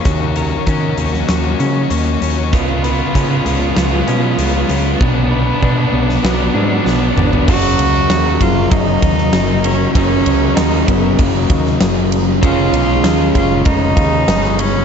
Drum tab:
CC |----------------|----------------|----------------|x---------------|
RD |----------------|----------------|----------------|--x-x-x-x-x-x-x-|
HH |x-x-x-x-x-x-x-x-|x-x-x-x-x-x-x-x-|----------------|----------------|
SD |-------oo-------|--------o-------|-------oo---o---|----o------oo---|
T2 |----------------|----------------|--------------o-|----------------|
FT |----------------|----------------|---------------o|----------------|
BD |o---o-----------|o---o-----------|o---o-----------|o-----o-o-o-----|

CC |----------------|----------------|
RD |x-x-x-x-x-x-x-x-|x-x-x-x-x-x-x-x-|
HH |----------------|----------------|
SD |----o------oo---|----o-------oo--|
T2 |----------------|----------------|
FT |----------------|----------------|
BD |o-----o-o-o-----|o-----o-o-o-----|